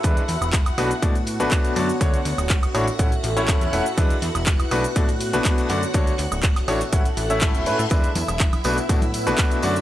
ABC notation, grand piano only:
X:1
M:4/4
L:1/16
Q:1/4=122
K:Bm
V:1 name="Grand piano"
[^G,DEB] z4 z [B,,A,DFB] z [B,,A,DFd] z2 [B,,A,DFB]3 [D,A,DFd] z | [D,A,DFc] z4 z [A,,A,DFc] z [A,,A,CEf] z2 [A,,A,CEc]3 [A,CEf] z | [^G,DEB] z4 z [B,,A,DFB] z [B,,A,DFd] z2 [B,,A,DFB]3 [D,A,DFd] z | [D,A,DFc] z4 z [A,,A,DFc] z [A,,A,CEf] z2 [A,,A,CEe] [A,,A,CEe]2 [A,CEB] z |
[^G,DEB] z4 z [B,,A,DFB] z [B,,A,DFd] z2 [B,,A,DFB]3 [D,A,DFd] z |]